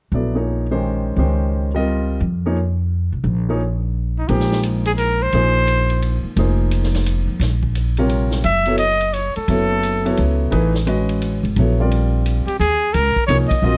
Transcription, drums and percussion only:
4.29 ride soft
4.40 snare soft
4.52 snare soft
4.63 hi-hat pedal medium
4.63 ride medium
4.85 ride soft
4.98 hi-hat pedal medium
4.98 ride medium
5.32 ride medium
5.67 hi-hat pedal soft
5.67 ride medium
5.90 ride soft
6.02 ride medium
6.37 ride medium
6.71 hi-hat pedal medium
6.71 ride medium
6.83 snare soft
6.94 snare soft
6.94 ride soft
7.06 hi-hat pedal soft
7.06 ride medium
7.41 snare soft
7.41 ride medium
7.63 kick soft
7.75 hi-hat pedal medium
7.75 ride medium
7.97 ride soft
8.09 ride medium
8.31 snare soft
8.44 ride medium
8.66 ride soft
8.78 hi-hat pedal medium
8.78 ride medium
9.01 ride soft
9.13 hi-hat pedal medium
9.13 ride medium
9.36 ride soft
9.48 ride medium
9.83 hi-hat pedal medium
9.83 ride medium
10.06 ride soft
10.17 ride medium
10.52 ride soft
10.74 snare soft
10.87 hi-hat pedal soft
10.87 ride medium
11.09 ride soft
11.22 hi-hat pedal medium
11.22 ride medium
11.45 ride soft
11.56 ride soft
11.91 ride medium
12.26 hi-hat pedal medium
12.26 ride medium
12.48 ride soft
12.61 ride medium
12.94 hi-hat pedal medium
12.94 ride medium
13.16 kick soft
13.29 hi-hat pedal medium
13.29 ride medium
13.51 kick medium
13.51 ride medium

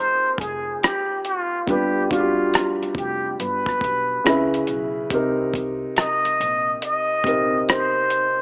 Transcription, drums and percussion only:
0.38 kick medium
0.38 closed hi-hat medium
0.83 cross-stick loud
0.83 closed hi-hat medium
1.25 closed hi-hat medium
1.68 kick loud
1.68 closed hi-hat medium
2.11 kick medium
2.11 closed hi-hat medium
2.54 cross-stick loud
2.54 closed hi-hat medium
2.83 closed hi-hat soft
2.95 kick medium
2.95 closed hi-hat medium
3.40 closed hi-hat medium
3.66 kick medium
3.66 cross-stick soft
3.81 kick medium
3.81 closed hi-hat medium
4.26 cross-stick loud
4.26 closed hi-hat medium
4.54 closed hi-hat soft
4.67 closed hi-hat medium
5.10 kick loud
5.10 closed hi-hat medium
5.54 kick medium
5.54 closed hi-hat medium
5.96 cross-stick loud
5.96 closed hi-hat medium
6.25 closed hi-hat soft
6.41 closed hi-hat medium
6.82 closed hi-hat medium
7.24 kick medium
7.24 closed hi-hat medium
7.69 cross-stick loud
7.69 closed hi-hat medium
8.10 closed hi-hat medium

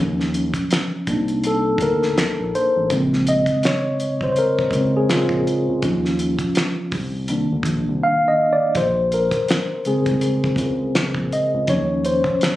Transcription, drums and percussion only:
0.20 snare soft
0.34 closed hi-hat medium
0.54 kick medium
0.54 closed hi-hat soft
0.71 finger snap medium
0.71 snare loud
0.71 closed hi-hat medium
1.07 kick medium
1.07 closed hi-hat medium
1.28 closed hi-hat soft
1.44 closed hi-hat medium
1.78 kick medium
1.78 closed hi-hat medium
2.02 snare soft
2.18 finger snap medium
2.18 snare medium
2.18 closed hi-hat medium
2.55 closed hi-hat medium
2.90 kick loud
2.90 closed hi-hat medium
3.13 snare soft
3.27 closed hi-hat medium
3.46 kick medium
3.46 closed hi-hat soft
3.63 finger snap medium
3.63 snare loud
3.63 closed hi-hat medium
4.00 closed hi-hat medium
4.21 kick medium
4.36 closed hi-hat medium
4.59 kick medium
4.71 kick medium
4.71 closed hi-hat medium
5.09 finger snap medium
5.09 snare loud
5.09 closed hi-hat medium
5.29 kick medium
5.47 closed hi-hat medium
5.82 kick medium
5.82 closed hi-hat medium
6.05 snare soft
6.19 closed hi-hat medium
6.39 kick medium
6.39 closed hi-hat soft
6.55 finger snap medium
6.55 snare loud
6.55 closed hi-hat medium
6.91 kick loud
6.91 open hi-hat soft
7.28 closed hi-hat medium
7.63 kick medium
7.63 closed hi-hat medium
8.75 kick loud
8.75 closed hi-hat medium
9.12 closed hi-hat medium
9.31 kick medium
9.31 closed hi-hat soft
9.48 finger snap medium
9.48 snare loud
9.48 closed hi-hat medium
9.85 closed hi-hat medium
10.06 kick medium
10.06 closed hi-hat soft
10.21 closed hi-hat medium
10.44 kick medium
10.56 kick medium
10.56 closed hi-hat medium
10.95 finger snap medium
10.95 snare medium
10.95 closed hi-hat medium
11.14 kick medium
11.32 closed hi-hat medium
11.67 kick loud
11.67 closed hi-hat medium
12.05 closed hi-hat medium
12.24 kick medium
12.41 finger snap medium
12.41 snare loud
12.41 closed hi-hat medium

